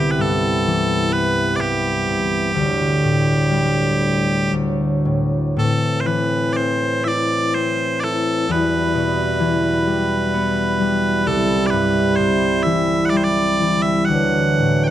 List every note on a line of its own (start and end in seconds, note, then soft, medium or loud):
0.00 2.60 C2 medium
0.00 2.50 C3 medium
0.00 2.51 B3 medium
0.00 2.51 E4 medium
0.00 0.11 G4 medium
0.11 0.21 B4 medium
0.18 1.58 G2 medium
0.18 1.13 A4 medium
0.66 2.12 E3 medium
1.13 1.56 B4 loud
1.56 2.12 G2 medium
1.56 1.60 D5 medium
1.60 4.54 G4 medium
2.08 2.60 C3 soft
2.54 5.55 D2 medium
2.54 4.52 D2 medium
2.54 4.52 A2 medium
2.54 4.51 G3 medium
3.03 4.59 A2 soft
3.51 4.59 G3 medium
4.52 5.63 D2 medium
4.52 5.55 A2 medium
4.52 5.56 F#3 medium
5.05 5.55 A2 soft
5.56 8.46 A2 medium
5.56 8.55 A2 medium
5.56 8.47 E3 medium
5.56 8.47 C4 medium
5.56 6.01 A4 medium
6.01 6.07 C5 soft
6.05 8.55 E3 soft
6.05 6.53 B4 medium
6.53 7.54 C4 soft
6.53 7.04 C5 medium
6.53 6.56 D5 medium
7.04 8.03 E4 soft
7.04 7.54 D5 medium
7.04 7.08 E5 medium
7.54 9.01 C4 soft
7.54 8.00 C5 medium
8.00 10.65 E4 soft
8.00 8.51 A4 medium
8.00 8.04 D5 medium
8.49 11.31 E2 medium
8.49 14.04 G3 medium
8.49 11.23 E4 medium
8.49 11.23 F#4 medium
8.49 11.27 B4 medium
8.95 11.31 B2 medium
9.40 11.31 E3 medium
9.87 10.79 G3 medium
10.34 11.33 B3 medium
10.81 11.31 G3 medium
11.25 14.13 C2 medium
11.25 14.05 C3 medium
11.25 14.05 E4 medium
11.25 11.66 A4 medium
11.66 12.16 B4 medium
11.66 11.70 D5 medium
11.73 12.22 G2 medium
12.16 14.13 C3 medium
12.16 12.63 C5 medium
12.63 13.59 E3 medium
12.63 13.05 E5 medium
13.05 13.09 F#5 medium
13.09 14.13 G3 medium
13.09 13.17 D5 medium
13.17 13.24 C5 medium
13.24 13.82 D5 medium
13.61 14.13 E3 medium
13.82 14.05 E5 medium
14.05 14.90 D2 medium
14.05 14.90 E3 medium
14.05 14.84 F#5 medium
14.09 14.90 F#3 medium
14.09 14.90 D4 medium
14.59 14.90 A2 soft
14.84 14.88 G5 medium